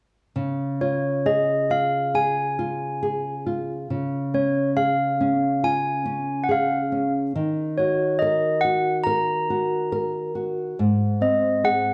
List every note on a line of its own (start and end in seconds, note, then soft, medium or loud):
0.36 3.86 C#3 medium
0.81 1.69 F4 soft
0.81 1.27 C#5 medium
1.26 2.13 G#4 medium
1.26 1.72 D#5 medium
1.70 2.58 F4 medium
1.70 2.17 F5 medium
2.14 3.01 G#4 soft
2.14 3.43 G#5 medium
2.59 3.45 F4 soft
3.03 3.87 G#4 medium
3.46 3.89 F4 soft
3.90 7.32 C#3 soft
4.34 5.19 C#4 soft
4.34 4.54 C#5 medium
4.77 6.46 G#4 soft
4.77 5.66 F5 medium
5.21 6.04 C#4 soft
5.63 7.32 F4 soft
5.63 6.46 G#5 medium
6.05 6.91 C#4 medium
6.44 6.50 F#5 medium
6.49 7.33 G#4 medium
6.49 7.11 F5 medium
6.92 7.34 C#4 soft
7.35 10.75 D#3 medium
7.78 8.63 F#4 soft
7.78 8.22 C#5 medium
8.19 9.05 A#4 medium
8.19 8.64 D#5 medium
8.61 9.49 F#4 soft
8.61 8.81 F#5 medium
9.04 9.91 A#4 medium
9.04 10.30 A#5 medium
9.50 10.34 F#4 medium
9.92 10.76 A#4 medium
10.35 10.77 F#4 soft
10.79 11.94 G#2 medium
11.21 11.94 C4 soft
11.21 11.67 D#5 medium
11.64 11.94 G#4 medium
11.64 11.94 F#5 medium